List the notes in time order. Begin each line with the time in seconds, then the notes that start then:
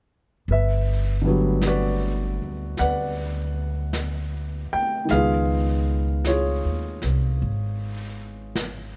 0.46 G1, brush sweep
0.51 B4 E5
1.22 D3 G3 B3
1.27 F#3
1.61 brush sweep, snare, hi-hat pedal
1.67 F#4 B4 D5
2.42 D2
2.77 D2 D5 F#5, brush sweep, snare
2.81 B4
3.93 brush sweep, snare, hi-hat pedal
4.73 G5, muted upright bass stroke
5.05 D#3, brush sweep, snare
5.09 C#2 G#3 B3 G#4 B4 F5
5.16 F4
6.25 F4 C#5, brush sweep, snare, hi-hat pedal
6.29 G#4
6.65 D#2
7.02 C2, snare
7.40 G#1, brush sweep
8.55 brush sweep, snare, hi-hat pedal